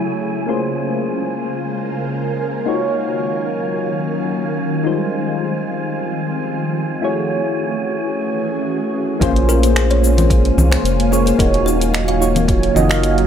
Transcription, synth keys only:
Already playing: A3 E4 F#4 G#4 C#5
0.47 A#3 C#4 F4 G#4 C5
2.65 A#3 D#4 F4 F#4 C#5
4.83 G3 G#3 D#4 F4 C5
7.01 A3 E4 F#4 G#4 C#5
9.20 A#3 C#4 F4 G#4 C5
10.02 A#3 C#4 F4 G#4
11.11 A#3 C#4 F4 G#4 C#5
11.37 A#3 D#4 F4 F#4 C#5
12.20 A#3 D#4 F4 F#4 C#5
12.75 A#3 D#4 F4 F#4 D#5
12.88 A#3 D#4 F4 F#4 F5

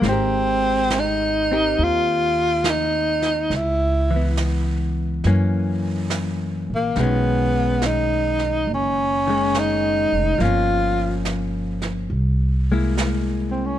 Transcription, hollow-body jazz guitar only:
0.02 G#3 C4
0.09 G4 A#4
1.52 C4 G4 A#4
4.11 E3
4.16 B3
5.27 E3 A#3 C#4
6.97 D#3 G#3
7.03 C#4
9.27 D#3 G#3 C#4
10.38 F3 A#3
10.44 C#4
12.72 G#3 A#3 E4

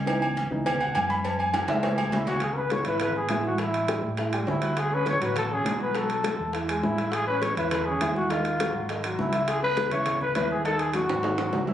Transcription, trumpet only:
2.14 E4
2.28 F#4
2.42 G#4
2.53 A#4 B4
2.72 C#5
2.87 B4
3.01 B4
3.17 G#4
3.46 F#4
3.60 E4
4.49 E4
4.78 G#4
4.94 B4
5.09 C#5
5.23 B4
5.38 A4
5.52 G#4
5.82 B4
5.97 A4
6.84 E4
7.14 G#4
7.27 B4
7.41 C#5
7.56 B4
7.70 B4
7.85 G#4
8.15 F#4
8.30 F4
9.20 E4
9.48 G#4
9.63 B4
9.91 C#5
10.21 B4
10.36 B4
10.51 G#4
10.65 A4
10.78 G#4
10.95 F#4

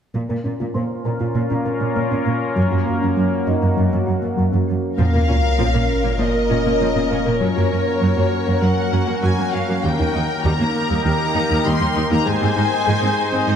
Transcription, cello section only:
0.14 A#2
0.30 A#2
0.45 A#2
0.60 A#2
0.75 A#2
1.05 A#2
1.20 A#2
1.35 A#2
1.51 A#2
1.66 A#2
1.81 A#2
1.96 A#2
2.12 A#2
2.26 A#2
2.57 F#2
2.72 F#2
2.87 F#2
3.02 F#2
3.18 F#2
3.47 F#2
3.62 F#2
3.77 F#2
3.93 F#2
4.08 F#2
4.23 F#2
4.39 F#2
4.54 F#2
4.69 F#2
5.00 A#2
5.14 A#2
5.29 A#2
5.59 A#2
5.75 A#2
6.05 A#2
6.20 A#2
6.51 A#2
6.66 A#2
6.81 A#2
6.95 A#2
7.12 A#2
7.26 A#2
7.41 F#2
7.56 F#2
7.71 F#2
8.02 F#2
8.17 F#2
8.47 F#2
8.62 F#2
8.93 F#2
9.07 F#2
9.23 F#2
9.39 F#2
9.54 F#2
9.69 F#2
9.84 D#2
10.00 D#2
10.15 D#2
10.45 D#2
10.60 D#2
10.91 D#2
11.05 D#2
11.35 D#2
11.51 D#2
11.66 D#2
11.81 D#2
11.96 D#2
12.12 D#2
12.27 G#2
12.42 G#2
12.57 G#2
12.87 G#2
13.02 G#2
13.32 G#2
13.47 G#2

